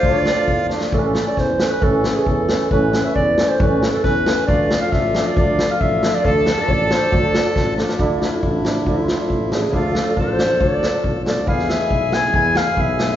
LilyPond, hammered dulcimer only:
\new Staff \with { instrumentName = "Hammered dulcimer" } { \time 2/4 \tempo 4 = 137 <f a d'>8 r16 <f a d'>16 r8 <f a d'>16 r16 | <e a cis'>8 r16 <e a cis'>16 r8 <e a cis'>16 r16 | <e a cis'>8 r16 <e a cis'>16 r8 <e a cis'>16 r16 | <e a cis'>8 r16 <e a cis'>16 r8 <e a cis'>16 r16 |
<e a cis'>8 r16 <e a cis'>16 r8 <e a cis'>16 r16 | <f a d'>8 r16 <f a d'>16 r8 <f a d'>16 r16 | <f a d'>8 r16 <f a d'>16 r8 <f a d'>16 r16 | <f a d'>8 r16 <f a d'>16 r8 <f a d'>16 r16 |
<f a d'>8 r16 <f a d'>16 r8 <f a d'>16 r16 | <f a d'>8 r16 <f a d'>16 r8 <f a d'>16 r16 | <f a d'>8 r16 <f a d'>16 r8 <f a d'>16 r16 | <f a d'>8 r16 <f a d'>16 r8 <f a d'>16 r16 |
<f a d'>8 r16 <f a d'>16 r8 <f a d'>16 r16 | <gis b e'>8 r16 <gis b e'>16 r8 <gis b e'>16 r16 | <gis b e'>8 r16 <gis b e'>16 r8 <gis b e'>16 r16 | }